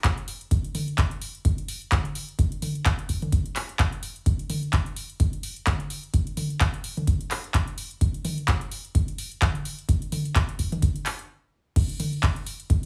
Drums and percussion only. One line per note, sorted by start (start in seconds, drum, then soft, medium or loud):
0.04 kick loud
0.04 clap loud
0.04 closed hi-hat medium
0.18 closed hi-hat soft
0.28 open hi-hat loud
0.41 closed hi-hat soft
0.51 kick loud
0.51 closed hi-hat medium
0.64 closed hi-hat soft
0.75 open hi-hat loud
0.75 mid tom medium
0.88 closed hi-hat soft
0.98 kick loud
0.98 clap loud
0.98 closed hi-hat medium
1.11 closed hi-hat soft
1.22 open hi-hat loud
1.35 closed hi-hat soft
1.45 kick loud
1.45 closed hi-hat medium
1.58 closed hi-hat soft
1.68 open hi-hat loud
1.82 closed hi-hat soft
1.92 kick loud
1.92 clap loud
1.92 closed hi-hat medium
1.92 mid tom medium
2.05 closed hi-hat soft
2.15 open hi-hat loud
2.29 closed hi-hat soft
2.39 kick loud
2.39 closed hi-hat medium
2.52 closed hi-hat soft
2.62 open hi-hat loud
2.62 mid tom medium
2.75 closed hi-hat soft
2.86 kick loud
2.86 clap loud
2.86 closed hi-hat medium
2.99 closed hi-hat soft
3.09 kick medium
3.09 open hi-hat loud
3.22 closed hi-hat soft
3.22 mid tom medium
3.32 kick loud
3.32 closed hi-hat medium
3.46 closed hi-hat soft
3.56 clap medium
3.56 open hi-hat loud
3.69 closed hi-hat soft
3.79 kick loud
3.79 clap loud
3.79 closed hi-hat medium
3.92 closed hi-hat soft
4.03 open hi-hat loud
4.16 closed hi-hat soft
4.26 kick loud
4.26 closed hi-hat medium
4.39 closed hi-hat soft
4.50 open hi-hat loud
4.50 mid tom medium
4.63 closed hi-hat soft
4.73 kick loud
4.73 clap loud
4.73 closed hi-hat medium
4.86 closed hi-hat soft
4.96 open hi-hat loud
5.10 closed hi-hat soft
5.20 kick loud
5.20 closed hi-hat medium
5.33 closed hi-hat soft
5.43 open hi-hat loud
5.56 closed hi-hat soft
5.67 kick loud
5.67 clap loud
5.67 closed hi-hat medium
5.67 mid tom medium
5.80 closed hi-hat soft
5.90 open hi-hat loud
6.03 closed hi-hat soft
6.14 kick loud
6.14 closed hi-hat medium
6.27 closed hi-hat soft
6.37 open hi-hat loud
6.37 mid tom medium
6.50 closed hi-hat soft
6.61 kick loud
6.61 clap loud
6.61 closed hi-hat medium
6.74 closed hi-hat soft
6.84 open hi-hat loud
6.97 closed hi-hat soft
6.97 mid tom medium
7.07 kick loud
7.07 closed hi-hat medium
7.21 closed hi-hat soft
7.31 clap medium
7.31 open hi-hat loud
7.44 closed hi-hat soft
7.54 kick loud
7.54 clap loud
7.54 closed hi-hat medium
7.67 closed hi-hat soft
7.78 open hi-hat loud
7.91 closed hi-hat soft
8.01 kick loud
8.01 closed hi-hat medium
8.14 closed hi-hat soft
8.25 open hi-hat loud
8.25 mid tom medium
8.38 closed hi-hat soft
8.48 kick loud
8.48 clap loud
8.48 closed hi-hat medium
8.61 closed hi-hat soft
8.71 open hi-hat loud
8.85 closed hi-hat soft
8.95 kick loud
8.95 closed hi-hat loud
9.08 closed hi-hat soft
9.18 open hi-hat loud
9.32 closed hi-hat soft
9.42 kick loud
9.42 clap loud
9.42 closed hi-hat loud
9.42 mid tom loud
9.55 closed hi-hat soft
9.65 open hi-hat loud
9.79 closed hi-hat soft
9.89 kick loud
9.89 closed hi-hat loud
10.02 closed hi-hat soft
10.12 open hi-hat loud
10.12 mid tom medium
10.25 closed hi-hat soft
10.35 kick loud
10.35 clap loud
10.35 closed hi-hat loud
10.49 closed hi-hat soft
10.59 kick medium
10.59 open hi-hat loud
10.72 closed hi-hat soft
10.72 mid tom medium
10.82 kick loud
10.82 closed hi-hat loud
10.96 closed hi-hat soft
11.06 clap medium
11.06 open hi-hat loud
11.19 closed hi-hat soft
11.76 kick loud
11.76 closed hi-hat medium
11.76 crash loud
11.89 closed hi-hat soft
12.00 open hi-hat loud
12.00 mid tom medium
12.13 closed hi-hat soft
12.23 kick loud
12.23 clap loud
12.23 closed hi-hat medium
12.36 closed hi-hat soft
12.46 open hi-hat loud
12.60 closed hi-hat soft
12.70 kick loud
12.70 closed hi-hat medium